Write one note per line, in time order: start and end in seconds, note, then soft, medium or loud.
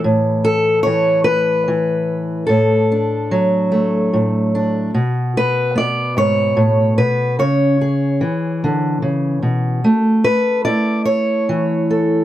0.00 0.85 E3 medium
0.04 2.44 A2 medium
0.45 0.83 A4 medium
0.83 1.67 E3 medium
0.83 1.24 C#5 medium
1.24 2.46 B4 medium
1.68 2.44 E3 medium
2.47 4.12 A2 medium
2.47 4.93 A4 medium
2.92 4.54 D4 soft
3.31 4.89 F#3 medium
3.72 4.94 A3 soft
4.13 4.90 A2 medium
4.55 4.90 D4 soft
4.94 6.97 B2 medium
5.37 5.77 B4 medium
5.75 7.34 B3 medium
5.75 6.17 D5 medium
6.17 6.56 G#2 medium
6.17 6.97 C#5 medium
6.57 6.98 A2 medium
6.98 7.39 B2 medium
6.98 7.39 B4 medium
7.39 8.21 C#3 medium
7.39 9.13 C#5 medium
7.81 9.80 G#4 soft
8.21 9.84 E3 medium
8.64 9.02 D3 medium
9.02 9.42 C#3 medium
9.43 9.84 B2 medium
9.84 12.24 A3 medium
10.24 10.64 B4 medium
10.65 12.24 E4 medium
10.65 11.05 D5 medium
11.05 12.24 C#5 medium
11.49 12.24 E3 medium
11.91 12.24 A4 soft